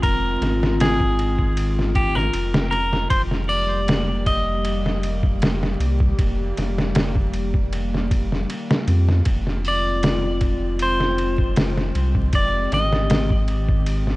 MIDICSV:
0, 0, Header, 1, 5, 480
1, 0, Start_track
1, 0, Tempo, 769231
1, 19, Time_signature, 4, 2, 24, 8
1, 8838, End_track
2, 0, Start_track
2, 0, Title_t, "Clean electric guitar"
2, 0, Program_c, 0, 27
2, 20, Note_on_c, 0, 70, 99
2, 504, Note_off_c, 0, 70, 0
2, 507, Note_on_c, 0, 68, 92
2, 1218, Note_off_c, 0, 68, 0
2, 1220, Note_on_c, 0, 67, 91
2, 1342, Note_off_c, 0, 67, 0
2, 1342, Note_on_c, 0, 70, 95
2, 1683, Note_off_c, 0, 70, 0
2, 1691, Note_on_c, 0, 70, 89
2, 1933, Note_off_c, 0, 70, 0
2, 1936, Note_on_c, 0, 72, 103
2, 2001, Note_off_c, 0, 72, 0
2, 2177, Note_on_c, 0, 74, 103
2, 2660, Note_off_c, 0, 74, 0
2, 2663, Note_on_c, 0, 75, 97
2, 5276, Note_off_c, 0, 75, 0
2, 6040, Note_on_c, 0, 74, 92
2, 6752, Note_off_c, 0, 74, 0
2, 6754, Note_on_c, 0, 72, 89
2, 7682, Note_off_c, 0, 72, 0
2, 7707, Note_on_c, 0, 74, 107
2, 7946, Note_off_c, 0, 74, 0
2, 7949, Note_on_c, 0, 75, 96
2, 8399, Note_off_c, 0, 75, 0
2, 8838, End_track
3, 0, Start_track
3, 0, Title_t, "Ambient pad"
3, 0, Program_c, 1, 92
3, 0, Note_on_c, 1, 51, 77
3, 0, Note_on_c, 1, 56, 73
3, 0, Note_on_c, 1, 60, 74
3, 0, Note_on_c, 1, 65, 93
3, 1912, Note_off_c, 1, 60, 0
3, 1914, Note_off_c, 1, 51, 0
3, 1914, Note_off_c, 1, 56, 0
3, 1914, Note_off_c, 1, 65, 0
3, 1934, Note_on_c, 1, 55, 76
3, 1935, Note_on_c, 1, 67, 87
3, 1936, Note_on_c, 1, 58, 75
3, 1939, Note_on_c, 1, 51, 80
3, 5751, Note_off_c, 1, 55, 0
3, 5752, Note_off_c, 1, 67, 0
3, 5753, Note_off_c, 1, 58, 0
3, 5754, Note_off_c, 1, 51, 0
3, 5773, Note_on_c, 1, 51, 80
3, 5774, Note_on_c, 1, 56, 75
3, 5776, Note_on_c, 1, 60, 73
3, 5777, Note_on_c, 1, 65, 92
3, 7679, Note_off_c, 1, 65, 0
3, 7705, Note_on_c, 1, 67, 90
3, 8838, Note_off_c, 1, 51, 0
3, 8838, Note_off_c, 1, 56, 0
3, 8838, Note_off_c, 1, 60, 0
3, 8838, Note_off_c, 1, 67, 0
3, 8838, End_track
4, 0, Start_track
4, 0, Title_t, "Sub bass"
4, 0, Program_c, 2, 38
4, 19, Note_on_c, 2, 29, 97
4, 231, Note_off_c, 2, 29, 0
4, 257, Note_on_c, 2, 32, 88
4, 1436, Note_off_c, 2, 32, 0
4, 1460, Note_on_c, 2, 29, 84
4, 1917, Note_off_c, 2, 29, 0
4, 1937, Note_on_c, 2, 29, 103
4, 3596, Note_off_c, 2, 29, 0
4, 3617, Note_on_c, 2, 36, 94
4, 3830, Note_off_c, 2, 36, 0
4, 3861, Note_on_c, 2, 29, 100
4, 4072, Note_off_c, 2, 29, 0
4, 4104, Note_on_c, 2, 29, 81
4, 5279, Note_off_c, 2, 29, 0
4, 5538, Note_on_c, 2, 41, 98
4, 5751, Note_off_c, 2, 41, 0
4, 5779, Note_on_c, 2, 29, 105
4, 7437, Note_off_c, 2, 29, 0
4, 7457, Note_on_c, 2, 36, 95
4, 7670, Note_off_c, 2, 36, 0
4, 7694, Note_on_c, 2, 29, 101
4, 7909, Note_off_c, 2, 29, 0
4, 7936, Note_on_c, 2, 32, 87
4, 8838, Note_off_c, 2, 32, 0
4, 8838, End_track
5, 0, Start_track
5, 0, Title_t, "Drums"
5, 20, Note_on_c, 9, 36, 108
5, 20, Note_on_c, 9, 51, 89
5, 82, Note_off_c, 9, 51, 0
5, 83, Note_off_c, 9, 36, 0
5, 261, Note_on_c, 9, 51, 66
5, 268, Note_on_c, 9, 38, 46
5, 324, Note_off_c, 9, 51, 0
5, 330, Note_off_c, 9, 38, 0
5, 393, Note_on_c, 9, 38, 55
5, 456, Note_off_c, 9, 38, 0
5, 501, Note_on_c, 9, 51, 100
5, 508, Note_on_c, 9, 38, 127
5, 564, Note_off_c, 9, 51, 0
5, 570, Note_off_c, 9, 38, 0
5, 624, Note_on_c, 9, 36, 100
5, 687, Note_off_c, 9, 36, 0
5, 742, Note_on_c, 9, 51, 67
5, 805, Note_off_c, 9, 51, 0
5, 865, Note_on_c, 9, 36, 95
5, 927, Note_off_c, 9, 36, 0
5, 980, Note_on_c, 9, 51, 85
5, 1042, Note_off_c, 9, 51, 0
5, 1116, Note_on_c, 9, 38, 38
5, 1178, Note_off_c, 9, 38, 0
5, 1218, Note_on_c, 9, 51, 68
5, 1219, Note_on_c, 9, 36, 97
5, 1281, Note_off_c, 9, 51, 0
5, 1282, Note_off_c, 9, 36, 0
5, 1350, Note_on_c, 9, 38, 39
5, 1412, Note_off_c, 9, 38, 0
5, 1457, Note_on_c, 9, 51, 88
5, 1519, Note_off_c, 9, 51, 0
5, 1587, Note_on_c, 9, 38, 109
5, 1649, Note_off_c, 9, 38, 0
5, 1700, Note_on_c, 9, 51, 69
5, 1762, Note_off_c, 9, 51, 0
5, 1828, Note_on_c, 9, 38, 49
5, 1890, Note_off_c, 9, 38, 0
5, 1937, Note_on_c, 9, 36, 104
5, 1937, Note_on_c, 9, 51, 86
5, 1999, Note_off_c, 9, 51, 0
5, 2000, Note_off_c, 9, 36, 0
5, 2067, Note_on_c, 9, 38, 40
5, 2129, Note_off_c, 9, 38, 0
5, 2179, Note_on_c, 9, 46, 82
5, 2241, Note_off_c, 9, 46, 0
5, 2421, Note_on_c, 9, 51, 99
5, 2427, Note_on_c, 9, 38, 122
5, 2483, Note_off_c, 9, 51, 0
5, 2490, Note_off_c, 9, 38, 0
5, 2660, Note_on_c, 9, 36, 90
5, 2661, Note_on_c, 9, 51, 62
5, 2722, Note_off_c, 9, 36, 0
5, 2723, Note_off_c, 9, 51, 0
5, 2900, Note_on_c, 9, 51, 88
5, 2962, Note_off_c, 9, 51, 0
5, 3032, Note_on_c, 9, 38, 46
5, 3095, Note_off_c, 9, 38, 0
5, 3141, Note_on_c, 9, 51, 71
5, 3203, Note_off_c, 9, 51, 0
5, 3264, Note_on_c, 9, 36, 99
5, 3327, Note_off_c, 9, 36, 0
5, 3381, Note_on_c, 9, 51, 89
5, 3388, Note_on_c, 9, 38, 112
5, 3444, Note_off_c, 9, 51, 0
5, 3450, Note_off_c, 9, 38, 0
5, 3512, Note_on_c, 9, 38, 47
5, 3575, Note_off_c, 9, 38, 0
5, 3622, Note_on_c, 9, 51, 68
5, 3684, Note_off_c, 9, 51, 0
5, 3745, Note_on_c, 9, 36, 103
5, 3808, Note_off_c, 9, 36, 0
5, 3860, Note_on_c, 9, 36, 108
5, 3860, Note_on_c, 9, 51, 84
5, 3923, Note_off_c, 9, 36, 0
5, 3923, Note_off_c, 9, 51, 0
5, 4103, Note_on_c, 9, 51, 67
5, 4109, Note_on_c, 9, 38, 43
5, 4165, Note_off_c, 9, 51, 0
5, 4171, Note_off_c, 9, 38, 0
5, 4233, Note_on_c, 9, 38, 57
5, 4295, Note_off_c, 9, 38, 0
5, 4337, Note_on_c, 9, 51, 100
5, 4343, Note_on_c, 9, 38, 123
5, 4399, Note_off_c, 9, 51, 0
5, 4406, Note_off_c, 9, 38, 0
5, 4464, Note_on_c, 9, 36, 94
5, 4527, Note_off_c, 9, 36, 0
5, 4577, Note_on_c, 9, 51, 64
5, 4639, Note_off_c, 9, 51, 0
5, 4705, Note_on_c, 9, 36, 98
5, 4767, Note_off_c, 9, 36, 0
5, 4821, Note_on_c, 9, 51, 86
5, 4883, Note_off_c, 9, 51, 0
5, 4957, Note_on_c, 9, 38, 38
5, 5020, Note_off_c, 9, 38, 0
5, 5061, Note_on_c, 9, 36, 92
5, 5062, Note_on_c, 9, 51, 67
5, 5124, Note_off_c, 9, 36, 0
5, 5125, Note_off_c, 9, 51, 0
5, 5193, Note_on_c, 9, 38, 39
5, 5256, Note_off_c, 9, 38, 0
5, 5302, Note_on_c, 9, 51, 87
5, 5365, Note_off_c, 9, 51, 0
5, 5433, Note_on_c, 9, 38, 107
5, 5496, Note_off_c, 9, 38, 0
5, 5539, Note_on_c, 9, 51, 72
5, 5601, Note_off_c, 9, 51, 0
5, 5669, Note_on_c, 9, 38, 50
5, 5731, Note_off_c, 9, 38, 0
5, 5774, Note_on_c, 9, 51, 92
5, 5778, Note_on_c, 9, 36, 106
5, 5836, Note_off_c, 9, 51, 0
5, 5840, Note_off_c, 9, 36, 0
5, 5907, Note_on_c, 9, 38, 37
5, 5970, Note_off_c, 9, 38, 0
5, 6019, Note_on_c, 9, 46, 82
5, 6082, Note_off_c, 9, 46, 0
5, 6259, Note_on_c, 9, 51, 96
5, 6265, Note_on_c, 9, 38, 127
5, 6321, Note_off_c, 9, 51, 0
5, 6327, Note_off_c, 9, 38, 0
5, 6495, Note_on_c, 9, 51, 70
5, 6497, Note_on_c, 9, 36, 92
5, 6557, Note_off_c, 9, 51, 0
5, 6560, Note_off_c, 9, 36, 0
5, 6734, Note_on_c, 9, 51, 84
5, 6797, Note_off_c, 9, 51, 0
5, 6865, Note_on_c, 9, 38, 47
5, 6928, Note_off_c, 9, 38, 0
5, 6978, Note_on_c, 9, 51, 66
5, 7040, Note_off_c, 9, 51, 0
5, 7103, Note_on_c, 9, 36, 95
5, 7165, Note_off_c, 9, 36, 0
5, 7216, Note_on_c, 9, 51, 83
5, 7222, Note_on_c, 9, 38, 118
5, 7278, Note_off_c, 9, 51, 0
5, 7284, Note_off_c, 9, 38, 0
5, 7348, Note_on_c, 9, 38, 45
5, 7410, Note_off_c, 9, 38, 0
5, 7458, Note_on_c, 9, 51, 69
5, 7520, Note_off_c, 9, 51, 0
5, 7581, Note_on_c, 9, 36, 104
5, 7644, Note_off_c, 9, 36, 0
5, 7692, Note_on_c, 9, 51, 90
5, 7695, Note_on_c, 9, 36, 108
5, 7755, Note_off_c, 9, 51, 0
5, 7758, Note_off_c, 9, 36, 0
5, 7937, Note_on_c, 9, 51, 72
5, 7943, Note_on_c, 9, 38, 45
5, 7999, Note_off_c, 9, 51, 0
5, 8005, Note_off_c, 9, 38, 0
5, 8065, Note_on_c, 9, 38, 53
5, 8127, Note_off_c, 9, 38, 0
5, 8173, Note_on_c, 9, 51, 92
5, 8180, Note_on_c, 9, 38, 126
5, 8236, Note_off_c, 9, 51, 0
5, 8242, Note_off_c, 9, 38, 0
5, 8301, Note_on_c, 9, 36, 93
5, 8363, Note_off_c, 9, 36, 0
5, 8410, Note_on_c, 9, 51, 67
5, 8473, Note_off_c, 9, 51, 0
5, 8540, Note_on_c, 9, 36, 97
5, 8603, Note_off_c, 9, 36, 0
5, 8651, Note_on_c, 9, 51, 84
5, 8714, Note_off_c, 9, 51, 0
5, 8780, Note_on_c, 9, 38, 36
5, 8838, Note_off_c, 9, 38, 0
5, 8838, End_track
0, 0, End_of_file